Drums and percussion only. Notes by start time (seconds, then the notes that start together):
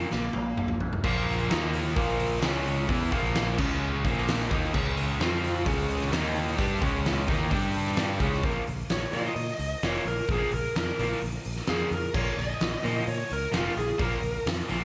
0.11 snare
0.33 high tom
0.57 mid tom
0.68 mid tom
0.80 floor tom
0.93 floor tom
1.04 kick, crash
1.28 open hi-hat
1.50 snare, open hi-hat
1.73 open hi-hat
1.96 kick, open hi-hat
2.20 open hi-hat
2.42 snare, open hi-hat
2.65 open hi-hat
2.89 kick, open hi-hat
3.12 kick, open hi-hat
3.35 snare, open hi-hat
3.58 kick, crash
4.05 kick, open hi-hat
4.18 snare
4.28 snare, open hi-hat
4.51 kick, open hi-hat
4.64 snare
4.74 kick, crash
4.97 open hi-hat
5.20 snare, open hi-hat
5.44 open hi-hat
5.66 kick, open hi-hat
5.90 open hi-hat
6.01 snare
6.12 snare, open hi-hat
6.35 open hi-hat
6.48 snare
6.58 kick, open hi-hat
6.82 kick, open hi-hat
7.06 snare, open hi-hat
7.28 kick, open hi-hat
7.51 kick, open hi-hat
7.74 open hi-hat
7.87 snare
7.97 snare, open hi-hat
8.20 kick, open hi-hat
8.33 snare
8.43 kick, open hi-hat
8.67 open hi-hat
8.89 snare, open hi-hat
9.13 open hi-hat
9.36 open hi-hat
9.59 open hi-hat
9.83 snare, open hi-hat
10.06 open hi-hat
10.27 kick, open hi-hat
10.51 open hi-hat
10.76 snare, open hi-hat
10.99 open hi-hat
11.21 open hi-hat
11.45 open hi-hat
11.56 snare
11.67 snare, open hi-hat
11.92 open hi-hat
12.14 kick, crash
12.39 open hi-hat
12.61 snare, open hi-hat
12.85 open hi-hat
13.07 open hi-hat
13.30 open hi-hat
13.53 snare, open hi-hat
13.77 open hi-hat
13.99 kick, open hi-hat
14.23 open hi-hat
14.47 snare, open hi-hat
14.69 open hi-hat